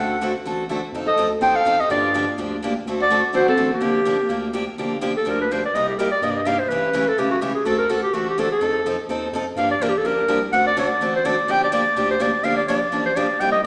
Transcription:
Already playing: D2 D3 A4 F#5
0.00 A3 C4 F#4 A4
0.21 D3 A3 C4 F#4 A4
0.45 A1 D3 A3 C4 F#4 A4
0.69 D3 A3 C4 F#4 A4
0.92 F2 F3 C4 D#4 A4
1.06 A4 D#5
1.16 D2 F3 C4 D#4 A4
1.40 D#2 F3 C4 D#4 A4 C5 G5
1.56 A4 F5
1.65 F2 F3 C4 D#4 A4
1.80 G4 D#5
1.89 G2 D3 F3 A#3 D4 F4 G4 D5
2.14 D3 F3 A#3 D4 G4
2.38 D2 D3 F3 A#3 D4 G4
2.62 D3 F3 A#3 D4 G4
2.85 D2 D3 A3 C4 F#4 A4
3.00 F#4 D5
3.10 D3 A3 C4 F#4 A4
3.33 A#1 D3 A3 C4 F#4 A4 C5
3.48 C4 A4
3.57 A1 D3 A3 C4 F#4 A4
3.72 A#3 G4
3.80 G1 D3 F3 A#3 D4 G4
4.05 D3 F3 A#3 D4 G4
4.29 D2 D3 F3 A#3 D4 G4
4.53 D3 F3 A#3 D4 G4
4.77 G1 D3 F3 A#3 D4 G4
5.01 D3 F3 A#3 D4 G4
5.17 A4
5.25 D2 D3 F3 A#3 D4 G4
5.30 A#4
5.41 B4
5.51 D3 F3 A#3 D4 G4 C5
5.66 D5
5.73 C2 C3 G3 A#3 D#4 G4 D#5
5.89 G4
5.98 C3 G3 A#3 D#4 G4 A#4
6.11 D5
6.21 G2 C3 G3 A#3 D#4 G4 D#5
6.31 D5
6.36 D#5
6.45 C3 G3 A#3 D#4 G4 F5
6.59 C5
6.68 A1 C#3 E3 A3 C#4 G4 B4
6.93 C#3 E3 A3 C#4 G4
7.08 A4
7.17 E1 C#3 E3 A3 C#4 G4
7.31 F#4
7.41 C#3 E3 A3 C#4 G4
7.55 G#4
7.65 D2 D3 A3 C4 F#4 A4
7.78 A#4
7.89 D3 A3 C4 F#4 A4
8.03 G4
8.13 A1 D3 A3 C4 F#4 A4
8.29 G4
8.38 D3 A3 C4 F#4 A4
8.52 A4
8.61 F2 F3 C4 D#4 A4
8.86 F3 C4 D#4 A4
9.08 D#2 F3 C4 D#4 A4
9.32 F2 F3 C4 D#4 A4
9.56 G2 D3 F3 A#3 D4 G4 F5
9.71 D5
9.80 A1 D3 F3 A#3 D4 G4 A#4
9.89 G4
9.98 A4
10.03 A#1 D3 F3 A#3 D4 G4 A#4
10.27 C2 D3 F3 A#3 D4 G4
10.52 D2 D3 A3 C4 F#4 A4 F#5
10.67 D5
10.77 D3 A3 C4 F#4 A4 D5
10.99 A1 D3 A3 C4 F#4 A4
11.16 C5
11.25 D3 A3 C4 F#4 A4 D5
11.47 G1 D3 F3 A#3 D4 G4
11.51 G5
11.64 D5
11.72 D3 F3 A#3 D4 G4 D5
11.95 D2 D3 F3 A#3 D4 G4
12.11 C5
12.20 D3 F3 A#3 D4 G4 D5
12.43 G1 D3 F3 A#3 D4 G4 F5
12.57 D5
12.68 A#1 D3 F3 A#3 D4 G4 D5
12.92 A1 D3 F3 A#3 D4 G4
13.06 C5
13.16 A#1 D3 F3 A#3 D4 G4 D5
13.29 A#1
13.40 C2 C3 G3 A#3 D#4 G4 G5
13.52 D#5

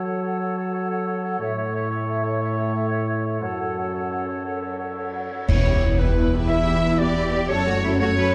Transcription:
Already playing: F#3 A4
0.04 A4 C#5 F#5
0.22 A4 C#5 F#5
0.39 A4 C#5 F#5
0.57 A4 C#5 F#5
0.74 A4 C#5 F#5
0.90 A4 C#5 F#5
1.06 A4 C#5 F#5
1.24 A4 C#5 F#5
1.39 A2 A4 C#5 E5
1.57 A4 C#5 E5
1.72 A4 C#5 E5
1.90 A4 C#5 E5
2.07 A4 C#5 E5
2.23 A4 C#5 E5
2.40 A4 C#5 E5
2.58 A4 C#5 E5
2.74 A4 C#5 E5
2.90 A4 C#5 E5
3.07 A4 C#5 E5
3.24 A4 C#5 E5
3.41 F#2 A4 C#5 F#5
3.58 A4 C#5 F#5
3.76 A4 C#5 F#5
3.92 A4 C#5 F#5
4.11 A4 C#5 F#5
4.28 A4 C#5 F#5
4.45 A4 C#5 F#5
4.62 A4 C#5 F#5
4.78 A4 C#5 F#5
4.96 A4 C#5 F#5
5.13 A4 C#5 F#5
5.31 A4 C#5 F#5
5.48 E2 B3 E4 B4 C#5, concert bass drum, crash
5.67 B3 E4 G4 E5
5.83 B3 E4 B4
5.98 B3 E4 B4
6.03 G4 E5
6.16 B3 E4 B4
6.34 B3 E4 G4 E5
6.48 B3 E4 B4 E5
6.66 B3 E4 G4 E5
6.83 B3 E4 B4
6.99 B3 E4 G4 D5 E5
7.15 B3 E4 B4
7.33 B3 E4 G4 E5
7.48 F#2 F#3 C#4 A4 C#5
7.67 A3 F#4 C#5
7.84 F#3 C#4 E4 A4
8.00 A3 F#4 C#5
8.17 F#3 C#4 A4 B4

